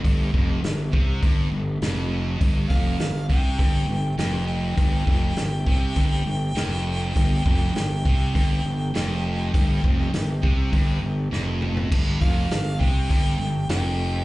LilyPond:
<<
  \new Staff \with { instrumentName = "Harmonica" } { \time 4/4 \key c \dorian \tempo 4 = 101 r1 | r8 f''4 g''4. g''8 g''8~ | g''1~ | g''1~ |
g''2. r4 | r8 f''4 g''4. g''4 | }
  \new Staff \with { instrumentName = "Distorted electric guitar" } { \clef bass \time 4/4 \key c \dorian g,8 f,8 g,8 c8 g,8 g,8 f,4 | g,8 f,8 g,8 c8 g,8 g,8 f,4 | g,8 f,8 g,8 c8 g,8 g,8 f,4 | g,8 f,8 g,8 c8 g,8 g,8 f,4 |
g,8 f,8 g,8 c8 g,8 g,8 f,4 | g,8 f,8 g,8 c8 g,8 g,8 f,4 | }
  \new Staff \with { instrumentName = "Fingered electric bass" } { \clef bass \time 4/4 \key c \dorian g,,8 f,,8 g,,8 c,8 g,,8 g,,8 f,,4 | g,,8 f,,8 g,,8 c,8 g,,8 g,,8 f,,4 | g,,8 f,,8 g,,8 c,8 g,,8 g,,8 f,,4 | g,,8 f,,8 g,,8 c,8 g,,8 g,,8 f,,4 |
g,,8 f,,8 g,,8 c,8 g,,8 g,,8 f,,4 | g,,8 f,,8 g,,8 c,8 g,,8 g,,8 f,,4 | }
  \new DrumStaff \with { instrumentName = "Drums" } \drummode { \time 4/4 <hho bd>8 bd8 <hho sn>8 bd8 <hho bd>4 <hho sn>4 | <hho bd>8 bd8 <hho sn>8 bd8 <hho bd>4 <hho sn>4 | <hho bd>8 bd8 <hho sn>8 bd8 <hho bd>4 <hho sn>4 | <hho bd>8 bd8 <hho sn>8 bd8 <hho bd>4 <hho sn>4 |
<hho bd>8 bd8 <hho sn>8 bd8 <hho bd>4 sn8 toml16 tomfh16 | <cymc bd>8 bd8 <hho sn>8 bd8 <hho bd>4 <hho sn>4 | }
>>